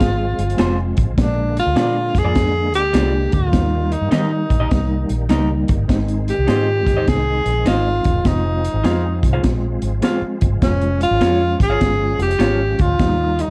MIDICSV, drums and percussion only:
0, 0, Header, 1, 2, 480
1, 0, Start_track
1, 0, Key_signature, -4, "major"
1, 0, Tempo, 590551
1, 956, Time_signature, 4, 2, 24, 8
1, 10973, End_track
2, 0, Start_track
2, 0, Title_t, "Drums"
2, 3, Note_on_c, 9, 42, 72
2, 6, Note_on_c, 9, 36, 87
2, 9, Note_on_c, 9, 38, 99
2, 84, Note_off_c, 9, 42, 0
2, 87, Note_off_c, 9, 36, 0
2, 90, Note_off_c, 9, 38, 0
2, 314, Note_on_c, 9, 42, 62
2, 395, Note_off_c, 9, 42, 0
2, 404, Note_on_c, 9, 42, 47
2, 472, Note_off_c, 9, 42, 0
2, 472, Note_on_c, 9, 42, 86
2, 484, Note_on_c, 9, 38, 102
2, 554, Note_off_c, 9, 42, 0
2, 565, Note_off_c, 9, 38, 0
2, 786, Note_on_c, 9, 42, 70
2, 795, Note_on_c, 9, 36, 93
2, 867, Note_off_c, 9, 42, 0
2, 876, Note_off_c, 9, 36, 0
2, 957, Note_on_c, 9, 36, 95
2, 957, Note_on_c, 9, 42, 76
2, 963, Note_on_c, 9, 38, 93
2, 1038, Note_off_c, 9, 36, 0
2, 1038, Note_off_c, 9, 42, 0
2, 1044, Note_off_c, 9, 38, 0
2, 1274, Note_on_c, 9, 42, 71
2, 1355, Note_off_c, 9, 42, 0
2, 1431, Note_on_c, 9, 42, 77
2, 1438, Note_on_c, 9, 38, 94
2, 1512, Note_off_c, 9, 42, 0
2, 1519, Note_off_c, 9, 38, 0
2, 1745, Note_on_c, 9, 36, 85
2, 1749, Note_on_c, 9, 38, 30
2, 1750, Note_on_c, 9, 42, 74
2, 1827, Note_off_c, 9, 36, 0
2, 1830, Note_off_c, 9, 38, 0
2, 1832, Note_off_c, 9, 42, 0
2, 1911, Note_on_c, 9, 42, 73
2, 1916, Note_on_c, 9, 36, 83
2, 1917, Note_on_c, 9, 38, 98
2, 1993, Note_off_c, 9, 42, 0
2, 1998, Note_off_c, 9, 36, 0
2, 1998, Note_off_c, 9, 38, 0
2, 2224, Note_on_c, 9, 42, 65
2, 2305, Note_off_c, 9, 42, 0
2, 2386, Note_on_c, 9, 42, 82
2, 2398, Note_on_c, 9, 38, 95
2, 2467, Note_off_c, 9, 42, 0
2, 2479, Note_off_c, 9, 38, 0
2, 2699, Note_on_c, 9, 42, 73
2, 2708, Note_on_c, 9, 36, 91
2, 2781, Note_off_c, 9, 42, 0
2, 2789, Note_off_c, 9, 36, 0
2, 2868, Note_on_c, 9, 42, 79
2, 2870, Note_on_c, 9, 36, 87
2, 2874, Note_on_c, 9, 38, 94
2, 2950, Note_off_c, 9, 42, 0
2, 2951, Note_off_c, 9, 36, 0
2, 2956, Note_off_c, 9, 38, 0
2, 3184, Note_on_c, 9, 42, 70
2, 3265, Note_off_c, 9, 42, 0
2, 3343, Note_on_c, 9, 42, 75
2, 3351, Note_on_c, 9, 38, 99
2, 3425, Note_off_c, 9, 42, 0
2, 3432, Note_off_c, 9, 38, 0
2, 3660, Note_on_c, 9, 36, 87
2, 3663, Note_on_c, 9, 42, 77
2, 3741, Note_off_c, 9, 36, 0
2, 3744, Note_off_c, 9, 42, 0
2, 3828, Note_on_c, 9, 42, 77
2, 3832, Note_on_c, 9, 36, 82
2, 3834, Note_on_c, 9, 38, 93
2, 3909, Note_off_c, 9, 42, 0
2, 3913, Note_off_c, 9, 36, 0
2, 3915, Note_off_c, 9, 38, 0
2, 4139, Note_on_c, 9, 42, 67
2, 4220, Note_off_c, 9, 42, 0
2, 4302, Note_on_c, 9, 42, 85
2, 4314, Note_on_c, 9, 38, 90
2, 4383, Note_off_c, 9, 42, 0
2, 4395, Note_off_c, 9, 38, 0
2, 4617, Note_on_c, 9, 42, 74
2, 4626, Note_on_c, 9, 36, 92
2, 4699, Note_off_c, 9, 42, 0
2, 4708, Note_off_c, 9, 36, 0
2, 4789, Note_on_c, 9, 36, 84
2, 4789, Note_on_c, 9, 42, 75
2, 4795, Note_on_c, 9, 38, 90
2, 4870, Note_off_c, 9, 36, 0
2, 4870, Note_off_c, 9, 42, 0
2, 4876, Note_off_c, 9, 38, 0
2, 4944, Note_on_c, 9, 42, 43
2, 5025, Note_off_c, 9, 42, 0
2, 5103, Note_on_c, 9, 42, 72
2, 5184, Note_off_c, 9, 42, 0
2, 5263, Note_on_c, 9, 42, 75
2, 5270, Note_on_c, 9, 38, 99
2, 5344, Note_off_c, 9, 42, 0
2, 5352, Note_off_c, 9, 38, 0
2, 5580, Note_on_c, 9, 36, 84
2, 5584, Note_on_c, 9, 38, 31
2, 5585, Note_on_c, 9, 42, 72
2, 5661, Note_off_c, 9, 36, 0
2, 5665, Note_off_c, 9, 38, 0
2, 5666, Note_off_c, 9, 42, 0
2, 5750, Note_on_c, 9, 42, 74
2, 5753, Note_on_c, 9, 36, 81
2, 5756, Note_on_c, 9, 38, 91
2, 5831, Note_off_c, 9, 42, 0
2, 5834, Note_off_c, 9, 36, 0
2, 5837, Note_off_c, 9, 38, 0
2, 6060, Note_on_c, 9, 42, 63
2, 6142, Note_off_c, 9, 42, 0
2, 6223, Note_on_c, 9, 42, 85
2, 6235, Note_on_c, 9, 38, 103
2, 6304, Note_off_c, 9, 42, 0
2, 6316, Note_off_c, 9, 38, 0
2, 6537, Note_on_c, 9, 42, 73
2, 6546, Note_on_c, 9, 36, 91
2, 6619, Note_off_c, 9, 42, 0
2, 6627, Note_off_c, 9, 36, 0
2, 6704, Note_on_c, 9, 42, 70
2, 6707, Note_on_c, 9, 36, 90
2, 6710, Note_on_c, 9, 38, 98
2, 6785, Note_off_c, 9, 42, 0
2, 6789, Note_off_c, 9, 36, 0
2, 6791, Note_off_c, 9, 38, 0
2, 7026, Note_on_c, 9, 42, 70
2, 7107, Note_off_c, 9, 42, 0
2, 7188, Note_on_c, 9, 42, 78
2, 7195, Note_on_c, 9, 38, 97
2, 7269, Note_off_c, 9, 42, 0
2, 7276, Note_off_c, 9, 38, 0
2, 7503, Note_on_c, 9, 36, 90
2, 7509, Note_on_c, 9, 42, 74
2, 7584, Note_off_c, 9, 36, 0
2, 7591, Note_off_c, 9, 42, 0
2, 7669, Note_on_c, 9, 42, 77
2, 7674, Note_on_c, 9, 36, 79
2, 7675, Note_on_c, 9, 38, 98
2, 7750, Note_off_c, 9, 42, 0
2, 7755, Note_off_c, 9, 36, 0
2, 7756, Note_off_c, 9, 38, 0
2, 7981, Note_on_c, 9, 42, 65
2, 8062, Note_off_c, 9, 42, 0
2, 8146, Note_on_c, 9, 42, 91
2, 8158, Note_on_c, 9, 38, 99
2, 8227, Note_off_c, 9, 42, 0
2, 8239, Note_off_c, 9, 38, 0
2, 8462, Note_on_c, 9, 42, 71
2, 8470, Note_on_c, 9, 36, 90
2, 8543, Note_off_c, 9, 42, 0
2, 8551, Note_off_c, 9, 36, 0
2, 8631, Note_on_c, 9, 42, 79
2, 8633, Note_on_c, 9, 36, 94
2, 8637, Note_on_c, 9, 38, 97
2, 8712, Note_off_c, 9, 42, 0
2, 8714, Note_off_c, 9, 36, 0
2, 8718, Note_off_c, 9, 38, 0
2, 8789, Note_on_c, 9, 42, 43
2, 8870, Note_off_c, 9, 42, 0
2, 8947, Note_on_c, 9, 42, 71
2, 9028, Note_off_c, 9, 42, 0
2, 9111, Note_on_c, 9, 42, 76
2, 9118, Note_on_c, 9, 38, 96
2, 9192, Note_off_c, 9, 42, 0
2, 9199, Note_off_c, 9, 38, 0
2, 9429, Note_on_c, 9, 36, 94
2, 9432, Note_on_c, 9, 38, 32
2, 9434, Note_on_c, 9, 42, 82
2, 9510, Note_off_c, 9, 36, 0
2, 9514, Note_off_c, 9, 38, 0
2, 9515, Note_off_c, 9, 42, 0
2, 9596, Note_on_c, 9, 42, 73
2, 9602, Note_on_c, 9, 36, 86
2, 9602, Note_on_c, 9, 38, 100
2, 9677, Note_off_c, 9, 42, 0
2, 9683, Note_off_c, 9, 36, 0
2, 9683, Note_off_c, 9, 38, 0
2, 9911, Note_on_c, 9, 42, 61
2, 9993, Note_off_c, 9, 42, 0
2, 10002, Note_on_c, 9, 42, 52
2, 10074, Note_off_c, 9, 42, 0
2, 10074, Note_on_c, 9, 42, 82
2, 10086, Note_on_c, 9, 38, 96
2, 10156, Note_off_c, 9, 42, 0
2, 10168, Note_off_c, 9, 38, 0
2, 10393, Note_on_c, 9, 42, 70
2, 10400, Note_on_c, 9, 36, 86
2, 10474, Note_off_c, 9, 42, 0
2, 10481, Note_off_c, 9, 36, 0
2, 10560, Note_on_c, 9, 42, 76
2, 10562, Note_on_c, 9, 36, 93
2, 10566, Note_on_c, 9, 38, 92
2, 10641, Note_off_c, 9, 42, 0
2, 10644, Note_off_c, 9, 36, 0
2, 10647, Note_off_c, 9, 38, 0
2, 10881, Note_on_c, 9, 42, 70
2, 10963, Note_off_c, 9, 42, 0
2, 10973, End_track
0, 0, End_of_file